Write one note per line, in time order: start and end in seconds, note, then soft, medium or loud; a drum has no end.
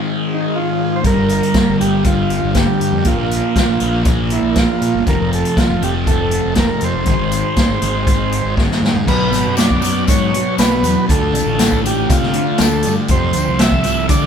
0.00 1.03 G#2 medium
0.00 1.03 D#3 medium
0.00 1.03 G#3 medium
0.00 1.02 C4 medium
0.00 1.03 D#4 medium
0.00 1.02 G#4 medium
0.34 0.58 D#4 medium
0.56 1.00 F4 medium
0.96 1.04 C5 medium
1.03 1.16 G1 medium
1.03 1.78 G2 medium
1.03 1.79 D3 medium
1.03 1.78 G3 medium
1.03 5.01 A#3 medium
1.03 3.03 D4 medium
1.03 7.02 F4 medium
1.03 3.03 G4 medium
1.03 1.77 A#4 medium
1.03 kick loud
1.03 closed hi-hat medium
1.17 1.40 G1 medium
1.29 closed hi-hat soft
1.43 closed hi-hat medium
1.54 kick loud
1.54 snare loud
1.54 closed hi-hat medium
1.68 1.79 G1 medium
1.79 2.39 G1 medium
1.79 3.04 G2 medium
1.79 3.04 D3 medium
1.79 3.03 G3 medium
1.79 2.04 G4 medium
1.79 closed hi-hat medium
2.04 2.57 F4 medium
2.04 kick loud
2.04 closed hi-hat medium
2.30 closed hi-hat medium
2.44 2.66 G1 medium
2.55 3.08 G4 medium
2.55 kick medium
2.55 snare loud
2.55 closed hi-hat medium
2.80 2.92 G2 medium
2.80 closed hi-hat medium
2.93 3.04 F2 medium
3.04 3.17 A#1 loud
3.04 3.79 A#2 medium
3.04 3.81 F3 medium
3.04 3.80 A#3 medium
3.04 5.05 D4 medium
3.04 4.03 F4 medium
3.04 5.05 A#4 medium
3.04 kick loud
3.04 closed hi-hat medium
3.18 3.41 A#1 medium
3.31 closed hi-hat medium
3.56 kick loud
3.56 snare loud
3.56 closed hi-hat medium
3.69 3.80 A#1 medium
3.80 4.40 A#1 medium
3.80 5.06 A#2 medium
3.80 5.05 F3 medium
3.80 5.05 A#3 medium
3.80 closed hi-hat medium
4.05 kick loud
4.05 closed hi-hat medium
4.30 4.58 E4 medium
4.30 closed hi-hat medium
4.43 4.66 A#1 medium
4.55 5.04 F4 medium
4.55 kick loud
4.55 snare loud
4.55 closed hi-hat medium
4.82 4.93 A#2 medium
4.82 closed hi-hat medium
4.95 5.06 G1 medium
5.06 5.18 F1 loud
5.06 5.81 F2 medium
5.06 5.81 C3 medium
5.06 5.80 F3 medium
5.06 7.05 A3 medium
5.06 9.04 C4 medium
5.06 7.05 A4 medium
5.06 5.31 A#4 medium
5.06 kick loud
5.06 closed hi-hat soft
5.20 5.42 F1 medium
5.33 5.57 A4 medium
5.33 closed hi-hat soft
5.45 closed hi-hat medium
5.57 5.83 F4 medium
5.57 kick loud
5.57 snare loud
5.57 closed hi-hat medium
5.70 5.81 F1 medium
5.81 6.40 F1 medium
5.81 7.06 F2 medium
5.81 7.06 C3 medium
5.81 7.05 F3 medium
5.81 5.95 G4 medium
5.81 closed hi-hat medium
6.07 6.54 A4 medium
6.07 kick loud
6.07 closed hi-hat medium
6.31 closed hi-hat medium
6.45 6.68 F1 medium
6.55 kick loud
6.55 snare loud
6.55 closed hi-hat medium
6.59 6.84 A#4 medium
6.81 6.93 F2 medium
6.81 8.55 C5 medium
6.81 closed hi-hat medium
6.94 7.06 F1 medium
7.06 7.18 G#1 loud
7.06 7.80 G#2 medium
7.06 7.81 D#3 medium
7.06 9.06 G#3 medium
7.06 7.80 G#3 medium
7.06 9.06 D#4 medium
7.06 9.05 G#4 medium
7.06 kick loud
7.06 closed hi-hat medium
7.19 7.42 G#1 medium
7.32 closed hi-hat medium
7.56 kick loud
7.56 snare loud
7.56 closed hi-hat medium
7.69 7.81 G#1 medium
7.82 8.41 G#1 medium
7.82 9.07 G#2 medium
7.82 9.06 D#3 medium
7.82 9.06 G#3 medium
7.82 closed hi-hat medium
8.07 kick loud
8.07 closed hi-hat medium
8.32 closed hi-hat medium
8.45 8.68 G#1 medium
8.57 kick medium
8.57 snare medium
8.71 snare medium
8.82 8.93 G#2 medium
8.82 snare medium
8.94 9.06 G#2 medium
8.94 floor tom medium
9.06 9.31 B1 loud
9.06 9.55 B2 medium
9.06 11.06 F#3 medium
9.06 9.33 F#3 medium
9.06 11.06 B3 medium
9.06 9.31 B3 medium
9.06 13.05 D4 medium
9.06 11.07 F#4 medium
9.06 9.55 B4 medium
9.06 kick loud
9.06 crash medium
9.06 tambourine soft
9.32 9.44 G#1 medium
9.32 9.55 F#3 medium
9.32 9.57 B3 medium
9.32 closed hi-hat medium
9.32 tambourine medium
9.45 10.04 F#2 medium
9.56 9.82 B2 medium
9.56 9.82 F#3 medium
9.56 9.80 B3 medium
9.56 10.04 D5 medium
9.56 snare loud
9.56 closed hi-hat medium
9.56 tambourine medium
9.70 kick medium
9.82 10.06 B2 medium
9.82 10.07 F#3 medium
9.82 10.08 B3 medium
9.82 closed hi-hat medium
9.82 tambourine medium
10.07 10.31 G#2 medium
10.07 10.57 B2 medium
10.07 10.34 F#3 medium
10.07 10.32 B3 medium
10.07 10.56 C#5 medium
10.07 kick loud
10.07 closed hi-hat medium
10.07 tambourine medium
10.33 10.58 F#3 medium
10.33 10.59 B3 medium
10.33 closed hi-hat medium
10.58 10.81 B1 medium
10.58 11.07 B2 medium
10.58 10.85 F#3 medium
10.58 10.83 B3 medium
10.58 11.06 B4 medium
10.58 snare loud
10.58 closed hi-hat medium
10.58 tambourine medium
10.83 10.95 E2 medium
10.83 11.08 F#3 medium
10.83 11.07 B3 medium
10.83 closed hi-hat medium
10.83 tambourine medium
11.09 11.32 D2 loud
11.09 11.57 D3 medium
11.09 13.08 F3 medium
11.09 11.35 A3 medium
11.09 13.08 A3 medium
11.09 11.33 D4 medium
11.09 14.26 F4 medium
11.09 11.81 A4 medium
11.09 kick loud
11.09 closed hi-hat medium
11.09 tambourine soft
11.33 11.45 C2 medium
11.33 11.59 A3 medium
11.33 11.59 D4 medium
11.33 closed hi-hat medium
11.33 tambourine medium
11.46 12.05 A1 medium
11.59 11.85 D3 medium
11.59 11.85 A3 medium
11.59 11.83 D4 medium
11.59 snare loud
11.59 closed hi-hat medium
11.59 tambourine medium
11.72 kick medium
11.84 12.07 D3 medium
11.84 12.09 A3 medium
11.84 12.09 D4 medium
11.84 12.11 G4 medium
11.84 closed hi-hat medium
11.84 tambourine medium
12.08 12.32 C3 medium
12.08 12.57 D3 medium
12.08 12.35 A3 medium
12.08 12.33 D4 medium
12.08 12.62 F4 medium
12.08 kick loud
12.08 closed hi-hat medium
12.08 tambourine medium
12.23 snare soft
12.33 12.59 A3 medium
12.33 12.60 D4 medium
12.33 closed hi-hat medium
12.58 12.83 D2 medium
12.58 13.08 D3 medium
12.58 12.86 A3 medium
12.58 12.84 D4 loud
12.58 12.95 A4 medium
12.58 snare loud
12.58 closed hi-hat medium
12.58 tambourine medium
12.83 13.08 D4 medium
12.83 closed hi-hat medium
12.83 tambourine medium
12.87 12.97 G2 medium
12.87 13.09 A3 medium
13.08 13.32 F2 loud
13.08 13.59 F2 medium
13.08 13.36 C3 medium
13.08 13.35 F3 medium
13.08 14.26 G3 medium
13.08 14.26 A3 medium
13.08 14.26 C4 medium
13.08 13.62 C5 medium
13.08 kick loud
13.08 closed hi-hat medium
13.08 tambourine soft
13.33 13.47 D2 medium
13.33 13.62 F3 medium
13.33 closed hi-hat medium
13.33 tambourine medium
13.37 13.60 C3 medium
13.48 14.07 C2 medium
13.59 13.85 F2 medium
13.59 13.84 C3 medium
13.59 13.84 F3 medium
13.59 14.07 E5 loud
13.59 snare loud
13.59 closed hi-hat medium
13.59 tambourine medium
13.72 kick medium
13.84 14.09 F2 medium
13.84 14.10 C3 medium
13.84 14.11 F3 medium
13.84 closed hi-hat medium
13.84 tambourine medium
14.09 14.26 F2 medium
14.09 14.26 C3 medium
14.09 14.26 D3 loud
14.09 14.26 F3 medium
14.09 14.26 D5 medium
14.09 kick loud
14.09 closed hi-hat loud
14.09 tambourine medium